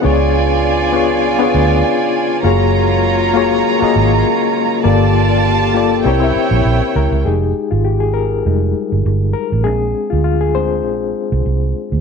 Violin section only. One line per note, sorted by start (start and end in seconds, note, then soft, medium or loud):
0.05 2.41 F4 medium
0.05 2.41 D5 medium
0.05 2.41 G#5 loud
2.44 4.81 F4 medium
2.44 4.81 C#5 medium
2.44 4.81 A#5 medium
4.84 6.02 F4 medium
4.84 6.02 D5 medium
4.84 6.02 A5 medium
6.05 7.23 E4 medium
6.05 7.23 C#5 medium
6.05 7.23 G5 medium